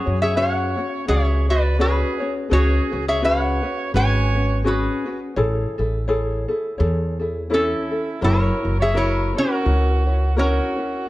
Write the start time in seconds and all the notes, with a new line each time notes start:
Already playing: F#4 G#4 C#5
0.06 F#2 C#4 F#4 C#5
0.21 G#4 C#5 E5
0.36 C#4 F#4 G#4 C#5 F#5
0.77 C#4 F#4 C#5
1.07 C#2 C#4 F#4 G#4 C#5 E5
1.49 F#4 B4 D5
1.79 C#4 F#4 G#4 B4 C#5
2.20 C#4 F#4 C#5
2.50 C#2 C#4 F#4 G#4 B4 C#5
2.92 C#2 C#4 F#4 B4
3.08 G#4 C#5 E5
3.22 C#4 F#4 G#4 B4 C#5 F#5
3.62 C#4 F#4 B4
3.94 G#1 C#4 F#4 G#4 B4 C#5 G#5
4.35 C#4 F#4 B4
4.64 C#4 F#4 G#4 B4
5.06 C#4 F#4 B4
5.36 A1 E4 G#4 A4 C#5
5.78 A1 E4 G#4 A4
6.08 E4 G#4 A4 C#5
6.48 E4 G#4 A4
6.78 E2 E4 G#4 A4 C#5
7.19 E4 G#4 A4
7.50 C#4 E4 A4 C#5
7.54 A4
7.91 E4 A4
8.21 F#1 E4 F#4 A#4 C#5
8.63 F#1 E4 F#4 C#5
8.80 G#4 C#5 E5
8.94 E4 F#4 A#4 C#5
9.35 C#4 E4 F#4 A#4 C#5
9.65 C#2 E4 F#4 A#4 C#5
10.06 E4 F#4 C#5
10.36 C#4 E4 F#4 A#4 C#5
10.77 E4 F#4 C#5